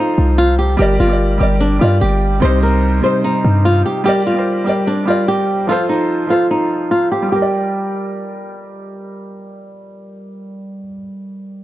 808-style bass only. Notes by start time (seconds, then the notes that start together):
0.18 C2
0.79 G1
1.00 G1
1.40 G1
1.81 G2
2.02 G1
2.42 C2
3.45 G2